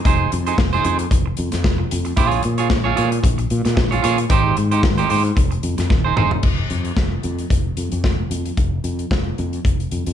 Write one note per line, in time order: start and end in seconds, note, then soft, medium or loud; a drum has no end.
0.05 0.25 F1 loud
0.05 0.30 D#4 medium
0.05 0.30 G#4 medium
0.05 0.31 C5 medium
0.05 kick loud
0.05 closed hi-hat medium
0.32 0.52 F2 loud
0.32 muted clean electric guitar stroke soft
0.32 closed hi-hat medium
0.47 0.57 D#4 medium
0.47 0.56 G#4 medium
0.47 0.56 C5 medium
0.47 closed hi-hat soft
0.58 0.78 F1 medium
0.58 muted clean electric guitar stroke medium
0.58 kick loud
0.58 snare loud
0.73 0.83 D#4 medium
0.73 0.84 G#4 medium
0.73 0.85 C5 medium
0.73 closed hi-hat soft
0.84 1.05 F2 loud
0.84 0.97 D#4 medium
0.84 0.97 G#4 medium
0.84 0.97 C5 medium
0.84 closed hi-hat medium
0.99 muted clean electric guitar stroke soft
0.99 closed hi-hat soft
1.11 1.31 F1 loud
1.11 muted clean electric guitar stroke soft
1.11 kick loud
1.11 closed hi-hat medium
1.26 muted clean electric guitar stroke medium
1.37 1.50 F2 medium
1.37 closed hi-hat medium
1.52 1.62 F2 medium
1.52 muted clean electric guitar stroke soft
1.52 snare soft
1.52 closed hi-hat soft
1.63 1.85 F1 loud
1.63 muted clean electric guitar stroke soft
1.63 kick loud
1.63 snare loud
1.78 muted clean electric guitar stroke soft
1.91 2.12 F2 medium
1.91 closed hi-hat medium
2.05 muted clean electric guitar stroke soft
2.05 closed hi-hat soft
2.17 2.38 A#1 loud
2.17 2.28 E4 medium
2.17 2.42 G#4 medium
2.17 2.43 C#5 medium
2.17 kick loud
2.17 closed hi-hat medium
2.28 2.42 F4 medium
2.28 closed hi-hat soft
2.43 2.72 A#2 medium
2.43 muted clean electric guitar stroke soft
2.43 closed hi-hat medium
2.58 2.69 F4 medium
2.58 2.68 G#4 medium
2.58 2.68 C#5 medium
2.58 closed hi-hat soft
2.70 2.91 A#1 loud
2.70 kick loud
2.70 snare loud
2.84 2.95 F4 medium
2.84 2.95 G#4 medium
2.84 2.97 C#5 medium
2.96 3.18 A#2 medium
2.96 3.08 F4 medium
2.96 3.09 G#4 medium
2.96 3.10 C#5 medium
2.96 closed hi-hat medium
3.11 muted clean electric guitar stroke medium
3.11 closed hi-hat soft
3.23 3.44 A#1 medium
3.23 muted clean electric guitar stroke soft
3.23 kick medium
3.23 closed hi-hat medium
3.38 muted clean electric guitar stroke soft
3.38 closed hi-hat soft
3.50 3.62 A#2 medium
3.50 closed hi-hat medium
3.65 3.74 A#2 loud
3.65 muted clean electric guitar stroke soft
3.65 snare soft
3.65 closed hi-hat soft
3.75 3.97 A#1 loud
3.75 muted clean electric guitar stroke soft
3.75 kick loud
3.75 snare loud
3.91 4.01 F4 medium
3.91 4.01 G#4 medium
3.91 4.01 C#5 medium
3.91 closed hi-hat soft
4.02 4.24 A#2 medium
4.02 4.18 F4 medium
4.02 4.18 G#4 medium
4.02 4.17 C#5 loud
4.02 closed hi-hat medium
4.18 muted clean electric guitar stroke medium
4.18 closed hi-hat soft
4.30 4.51 G#1 loud
4.30 4.55 D#4 medium
4.30 4.55 G4 medium
4.30 4.56 C5 medium
4.30 kick loud
4.30 closed hi-hat medium
4.56 4.85 G#2 medium
4.56 muted clean electric guitar stroke soft
4.56 closed hi-hat medium
4.71 4.82 D#4 soft
4.71 4.81 G4 medium
4.71 4.81 C5 medium
4.71 closed hi-hat soft
4.83 5.04 G#1 loud
4.83 muted clean electric guitar stroke soft
4.83 kick loud
4.83 snare loud
4.98 5.08 D#4 medium
4.98 5.09 G4 medium
4.98 5.10 C5 medium
4.98 closed hi-hat soft
5.09 5.31 G#2 loud
5.09 5.22 D#4 medium
5.09 5.22 G4 medium
5.09 5.22 C5 medium
5.09 open hi-hat medium
5.24 muted clean electric guitar stroke soft
5.24 closed hi-hat soft
5.36 5.57 F1 loud
5.36 muted clean electric guitar stroke medium
5.36 kick loud
5.36 closed hi-hat medium
5.51 muted clean electric guitar stroke soft
5.51 closed hi-hat soft
5.63 5.75 F2 medium
5.63 closed hi-hat medium
5.78 5.87 F2 medium
5.78 muted clean electric guitar stroke soft
5.78 snare soft
5.78 closed hi-hat medium
5.90 6.11 D#1 loud
5.90 muted clean electric guitar stroke soft
5.90 kick loud
5.90 snare medium
6.05 6.15 D#4 medium
6.05 6.15 G#4 medium
6.05 6.14 C5 medium
6.16 6.37 E1 loud
6.16 6.32 D#4 medium
6.16 6.32 G#4 medium
6.16 6.31 C5 medium
6.16 mid tom loud
6.31 muted clean electric guitar stroke medium
6.31 floor tom loud
6.43 6.64 F1 loud
6.43 kick medium
6.43 crash medium
6.70 6.91 F2 medium
6.70 closed hi-hat soft
6.85 closed hi-hat soft
6.97 7.17 F1 medium
6.97 kick loud
6.97 snare medium
7.23 7.44 F2 medium
7.23 closed hi-hat soft
7.38 closed hi-hat soft
7.50 7.71 F1 medium
7.50 kick loud
7.50 closed hi-hat medium
7.77 7.89 F2 medium
7.77 closed hi-hat medium
7.92 8.01 F2 medium
7.92 closed hi-hat soft
8.04 8.25 F1 medium
8.04 kick loud
8.04 snare medium
8.31 8.51 F2 medium
8.31 closed hi-hat medium
8.45 closed hi-hat soft
8.57 8.78 F1 medium
8.57 kick medium
8.57 closed hi-hat medium
8.84 9.04 F2 medium
8.84 closed hi-hat soft
8.99 closed hi-hat soft
9.11 9.32 F1 medium
9.11 kick loud
9.11 snare loud
9.38 9.59 F2 medium
9.38 closed hi-hat soft
9.53 closed hi-hat soft
9.65 9.85 F1 medium
9.65 kick medium
9.65 closed hi-hat medium
9.80 closed hi-hat soft
9.91 10.03 F2 medium
9.91 closed hi-hat medium
10.06 10.13 F2 medium
10.06 closed hi-hat soft